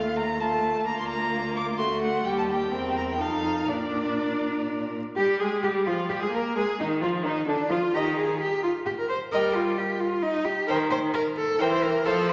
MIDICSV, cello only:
0, 0, Header, 1, 2, 480
1, 0, Start_track
1, 0, Key_signature, -2, "major"
1, 0, Tempo, 462250
1, 892, Time_signature, 3, 2, 24, 8
1, 2822, Tempo, 491400
1, 5220, Key_signature, -3, "major"
1, 5222, Tempo, 466200
1, 6662, Tempo, 456969
1, 12707, End_track
2, 0, Start_track
2, 0, Title_t, "Cello"
2, 0, Program_c, 0, 42
2, 0, Note_on_c, 0, 39, 56
2, 848, Note_off_c, 0, 39, 0
2, 892, Note_on_c, 0, 38, 61
2, 1834, Note_off_c, 0, 38, 0
2, 1851, Note_on_c, 0, 38, 63
2, 2325, Note_off_c, 0, 38, 0
2, 2334, Note_on_c, 0, 39, 58
2, 2824, Note_on_c, 0, 40, 58
2, 2839, Note_off_c, 0, 39, 0
2, 3290, Note_on_c, 0, 41, 59
2, 3305, Note_off_c, 0, 40, 0
2, 3764, Note_off_c, 0, 41, 0
2, 3770, Note_on_c, 0, 46, 53
2, 4992, Note_off_c, 0, 46, 0
2, 5212, Note_on_c, 0, 67, 81
2, 5441, Note_off_c, 0, 67, 0
2, 5448, Note_on_c, 0, 68, 75
2, 5530, Note_off_c, 0, 68, 0
2, 5689, Note_on_c, 0, 67, 75
2, 5771, Note_off_c, 0, 67, 0
2, 5928, Note_on_c, 0, 65, 68
2, 6010, Note_off_c, 0, 65, 0
2, 6168, Note_on_c, 0, 67, 77
2, 6218, Note_off_c, 0, 67, 0
2, 6301, Note_on_c, 0, 68, 69
2, 6349, Note_off_c, 0, 68, 0
2, 6420, Note_on_c, 0, 70, 69
2, 6656, Note_off_c, 0, 70, 0
2, 6660, Note_on_c, 0, 68, 79
2, 6744, Note_off_c, 0, 68, 0
2, 6904, Note_on_c, 0, 63, 70
2, 6988, Note_off_c, 0, 63, 0
2, 7140, Note_on_c, 0, 65, 64
2, 7224, Note_off_c, 0, 65, 0
2, 7375, Note_on_c, 0, 63, 68
2, 7606, Note_off_c, 0, 63, 0
2, 7612, Note_on_c, 0, 62, 79
2, 7850, Note_on_c, 0, 65, 74
2, 7866, Note_off_c, 0, 62, 0
2, 8097, Note_on_c, 0, 67, 84
2, 8113, Note_off_c, 0, 65, 0
2, 8333, Note_off_c, 0, 67, 0
2, 8339, Note_on_c, 0, 68, 81
2, 8576, Note_off_c, 0, 68, 0
2, 8585, Note_on_c, 0, 67, 84
2, 8819, Note_off_c, 0, 67, 0
2, 8826, Note_on_c, 0, 65, 76
2, 8910, Note_off_c, 0, 65, 0
2, 9062, Note_on_c, 0, 67, 83
2, 9111, Note_off_c, 0, 67, 0
2, 9196, Note_on_c, 0, 70, 80
2, 9301, Note_off_c, 0, 70, 0
2, 9307, Note_on_c, 0, 72, 86
2, 9391, Note_off_c, 0, 72, 0
2, 9548, Note_on_c, 0, 70, 102
2, 9789, Note_on_c, 0, 65, 91
2, 9805, Note_off_c, 0, 70, 0
2, 10023, Note_on_c, 0, 67, 81
2, 10039, Note_off_c, 0, 65, 0
2, 10261, Note_on_c, 0, 65, 86
2, 10277, Note_off_c, 0, 67, 0
2, 10494, Note_on_c, 0, 63, 98
2, 10510, Note_off_c, 0, 65, 0
2, 10734, Note_on_c, 0, 67, 90
2, 10749, Note_off_c, 0, 63, 0
2, 10963, Note_off_c, 0, 67, 0
2, 10969, Note_on_c, 0, 70, 101
2, 11053, Note_off_c, 0, 70, 0
2, 11211, Note_on_c, 0, 72, 99
2, 11295, Note_off_c, 0, 72, 0
2, 11456, Note_on_c, 0, 70, 105
2, 11540, Note_off_c, 0, 70, 0
2, 11696, Note_on_c, 0, 69, 95
2, 11929, Note_on_c, 0, 70, 103
2, 11945, Note_off_c, 0, 69, 0
2, 12055, Note_off_c, 0, 70, 0
2, 12062, Note_on_c, 0, 72, 100
2, 12177, Note_on_c, 0, 70, 101
2, 12193, Note_off_c, 0, 72, 0
2, 12421, Note_on_c, 0, 69, 115
2, 12436, Note_off_c, 0, 70, 0
2, 12669, Note_on_c, 0, 72, 105
2, 12684, Note_off_c, 0, 69, 0
2, 12707, Note_off_c, 0, 72, 0
2, 12707, End_track
0, 0, End_of_file